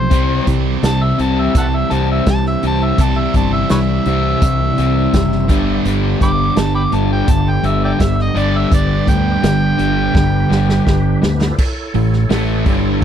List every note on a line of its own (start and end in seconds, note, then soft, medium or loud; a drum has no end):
0.00 0.11 B1 medium
0.00 0.11 C4 medium
0.00 0.46 C5 loud
0.10 0.39 C2 medium
0.10 0.45 C3 loud
0.10 2.96 E3 medium
0.10 0.45 G3 loud
0.10 2.95 C4 medium
0.10 0.45 C4 loud
0.10 2.95 E4 medium
0.10 2.95 G4 medium
0.10 2.99 G4 loud
0.10 kick loud
0.10 closed hi-hat medium
0.47 0.76 C2 medium
0.47 0.79 C3 medium
0.47 0.80 G3 medium
0.47 kick medium
0.47 closed hi-hat medium
0.83 1.11 C2 medium
0.83 1.15 C3 medium
0.83 1.16 G3 medium
0.83 1.04 A5 loud
0.83 snare loud
0.83 closed hi-hat medium
1.03 1.19 E5 loud
1.18 1.47 C2 medium
1.18 1.52 C3 medium
1.18 1.53 G3 medium
1.18 1.53 C4 loud
1.18 1.42 A5 medium
1.18 closed hi-hat medium
1.40 1.55 E5 medium
1.55 1.83 C2 medium
1.55 1.87 C3 medium
1.55 1.88 G3 medium
1.55 1.66 E5 medium
1.55 1.66 F#5 medium
1.55 1.77 A5 loud
1.55 kick loud
1.55 closed hi-hat loud
1.76 1.94 E5 loud
1.90 2.19 C2 medium
1.90 2.24 C3 medium
1.90 2.25 G3 loud
1.90 2.25 C4 medium
1.90 2.08 A5 loud
1.90 closed hi-hat medium
2.11 2.27 E5 medium
2.26 2.55 C2 medium
2.26 2.59 C3 medium
2.26 2.59 G3 medium
2.26 2.45 A5 loud
2.26 kick medium
2.26 snare loud
2.26 closed hi-hat medium
2.45 2.63 E5 medium
2.45 snare soft
2.63 2.91 C2 medium
2.63 2.96 C3 medium
2.63 2.97 G3 medium
2.63 2.97 C4 medium
2.63 2.86 A5 loud
2.63 closed hi-hat medium
2.84 3.04 E5 loud
2.98 3.27 C2 loud
2.98 3.31 C3 medium
2.98 5.47 E3 loud
2.98 5.47 G3 medium
2.98 3.32 G3 loud
2.98 5.47 C4 medium
2.98 5.48 C4 loud
2.98 5.47 E4 medium
2.98 5.50 G4 loud
2.98 kick loud
2.98 closed hi-hat loud
3.03 3.20 A5 loud
3.19 3.34 E5 medium
3.34 3.63 G1 medium
3.34 3.67 C3 medium
3.34 3.67 G3 medium
3.34 3.52 A5 medium
3.34 kick medium
3.34 closed hi-hat medium
3.53 3.69 E5 loud
3.70 3.98 C2 medium
3.70 4.03 C3 medium
3.70 4.03 G3 medium
3.70 3.80 B4 medium
3.70 3.79 C#5 medium
3.70 5.82 E5 loud
3.70 snare loud
3.70 closed hi-hat medium
4.05 4.34 C2 loud
4.05 4.40 C3 medium
4.05 4.41 G3 medium
4.05 4.41 C4 medium
4.05 closed hi-hat medium
4.42 4.70 C2 medium
4.42 4.75 C3 medium
4.42 4.75 G3 medium
4.42 kick loud
4.42 closed hi-hat loud
4.78 5.06 C2 medium
4.78 5.11 C3 medium
4.78 5.12 G3 medium
4.78 5.12 C4 medium
4.78 snare soft
4.78 closed hi-hat medium
5.13 5.49 F#1 medium
5.13 5.46 C3 medium
5.13 5.46 G3 medium
5.13 kick medium
5.13 snare loud
5.13 closed hi-hat medium
5.32 snare soft
5.49 5.77 G1 medium
5.49 5.83 G2 medium
5.49 5.84 D3 medium
5.49 5.84 G3 loud
5.49 8.33 B3 medium
5.49 8.34 B3 medium
5.49 8.34 D4 medium
5.49 8.33 G4 medium
5.49 8.35 G4 medium
5.49 kick loud
5.49 closed hi-hat medium
5.85 6.14 G1 loud
5.85 6.19 G2 medium
5.85 6.19 D3 loud
5.85 6.20 G3 loud
5.85 closed hi-hat medium
6.20 6.49 G1 medium
6.20 6.53 G2 medium
6.20 6.53 D3 medium
6.20 6.29 G5 medium
6.20 6.30 B5 medium
6.20 6.61 D6 loud
6.20 kick medium
6.20 closed hi-hat medium
6.56 6.85 G1 loud
6.56 6.89 G2 medium
6.56 6.89 D3 medium
6.56 6.74 A5 loud
6.56 snare loud
6.56 closed hi-hat medium
6.75 6.82 G5 medium
6.75 6.83 B5 medium
6.75 6.96 D6 loud
6.92 7.21 G1 medium
6.92 7.26 G2 medium
6.92 7.27 D3 medium
6.92 7.27 G3 medium
6.92 7.10 A5 medium
6.92 closed hi-hat medium
7.13 7.32 G5 loud
7.28 7.57 G1 medium
7.28 7.61 G2 medium
7.28 7.61 D3 medium
7.28 7.51 A5 loud
7.28 kick loud
7.28 closed hi-hat loud
7.50 7.69 G5 medium
7.63 7.92 G1 medium
7.63 7.98 G2 medium
7.63 7.98 D3 loud
7.63 7.98 G3 loud
7.63 7.83 E5 medium
7.63 closed hi-hat medium
7.85 7.93 D5 medium
7.85 7.91 E5 medium
7.85 8.05 G5 medium
7.99 8.28 G1 medium
7.99 8.32 G2 medium
7.99 8.32 D3 medium
7.99 kick medium
7.99 snare loud
7.99 closed hi-hat medium
8.03 8.19 E5 medium
8.19 8.40 D#5 loud
8.19 snare soft
8.35 8.64 G1 medium
8.35 8.69 G2 medium
8.35 8.70 D3 loud
8.35 8.70 G3 medium
8.35 11.21 B3 medium
8.35 11.35 D4 medium
8.35 11.21 D4 medium
8.35 11.44 G4 medium
8.35 11.21 G4 medium
8.35 11.49 B4 medium
8.35 closed hi-hat medium
8.39 8.59 D5 loud
8.57 8.73 E5 loud
8.71 9.00 G1 medium
8.71 9.04 G2 medium
8.71 9.04 D3 loud
8.71 9.08 D5 medium
8.71 kick loud
8.71 closed hi-hat loud
9.07 9.36 D2 medium
9.07 9.40 G2 medium
9.07 9.40 D3 medium
9.07 11.19 G5 loud
9.07 kick medium
9.07 closed hi-hat medium
9.43 9.72 G1 loud
9.43 9.76 G2 medium
9.43 9.76 D3 medium
9.43 snare loud
9.43 closed hi-hat loud
9.78 10.08 G1 medium
9.78 10.12 G2 medium
9.78 10.13 D3 medium
9.78 10.13 G3 medium
9.78 closed hi-hat medium
10.14 10.43 G1 medium
10.14 10.47 G2 medium
10.14 10.47 D3 loud
10.14 kick loud
10.14 snare medium
10.49 10.79 G1 loud
10.49 10.84 G2 medium
10.49 10.84 D3 medium
10.49 10.85 G3 loud
10.49 snare medium
10.69 snare medium
10.86 11.15 G1 medium
10.86 11.19 G2 medium
10.86 11.19 D3 medium
10.86 kick medium
10.86 snare medium
11.22 11.51 D2 medium
11.22 11.55 G2 medium
11.22 11.55 D3 medium
11.22 snare loud
11.27 11.52 A3 medium
11.27 11.54 B3 medium
11.34 11.55 C4 medium
11.34 11.56 D4 medium
11.38 11.57 E4 medium
11.38 11.59 F4 medium
11.38 snare medium
11.45 11.61 G4 medium
11.45 11.58 A4 medium
11.50 11.63 B4 medium
11.50 11.65 C5 medium
11.56 13.04 E4 medium
11.56 13.04 A4 medium
11.56 13.04 C#5 medium
11.56 11.66 D5 medium
11.56 kick loud
11.56 crash loud
11.94 12.28 A1 medium
11.94 12.24 A2 medium
11.94 12.24 E3 medium
11.94 open hi-hat medium
12.13 snare soft
12.29 12.64 A1 medium
12.29 12.65 A2 loud
12.29 12.65 E3 loud
12.29 12.65 A3 loud
12.29 snare loud
12.29 open hi-hat medium
12.65 13.00 G1 loud
12.65 13.01 G2 medium
12.65 13.01 D3 medium
12.65 13.01 G3 loud
12.65 kick loud
12.65 open hi-hat medium